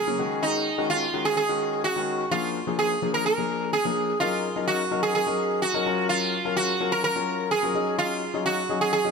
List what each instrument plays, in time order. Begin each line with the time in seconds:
Already playing: sitar G#4
0.07 grand piano C#3 F#3 A#3 C#4
0.19 grand piano D#3 G#3 C#4 F#4
0.43 sitar D#4
0.78 grand piano D#3 G#3 C#4 F#4
0.90 sitar F4
1.13 grand piano D#3 G#3 C#4 F#4
1.25 sitar G#4
1.37 sitar G#4
1.49 grand piano D#3 G#3 C#4 F#4
1.84 sitar F#4
1.96 grand piano D#3 G#3 C#4 F#4
2.31 grand piano F3 A#3 D4 G#4, sitar F4
2.67 grand piano F3 A#3 D4 G#4
2.79 sitar G#4
3.02 grand piano F3 A#3 D4 G#4
3.14 sitar A#4
3.26 sitar A#4
3.38 grand piano F3 A#3 D4 G#4
3.73 sitar G#4
3.85 grand piano F3 A#3 D4 G#4
4.20 grand piano F#3 C#4 D#4 A#4, sitar F4
4.56 grand piano F#3 C#4 D#4 A#4
4.68 sitar F#4
4.91 grand piano F#3 C#4 D#4 A#4
5.03 sitar G#4
5.15 sitar G#4
5.27 grand piano F#3 C#4 D#4 A#4
5.62 sitar F#4
5.74 grand piano F#3 C#4 D#4 A#4
5.86 grand piano F#3 C#4 F4 A#4
6.09 sitar F4
6.45 grand piano F#3 C#4 F4 A#4
6.57 sitar F#4
6.80 grand piano F#3 C#4 F4 A#4
6.92 sitar A#4
7.04 sitar A#4
7.16 grand piano F#3 C#4 F4 A#4
7.51 sitar G#4
7.63 grand piano F#3 C#4 F4 A#4
7.75 grand piano F#3 C#4 D#4 G#4
7.98 sitar F4
8.34 grand piano F#3 C#4 D#4 G#4
8.46 sitar F#4
8.69 grand piano F#3 C#4 D#4 G#4
8.81 sitar G#4
8.93 sitar G#4
9.05 grand piano F#3 C#4 D#4 G#4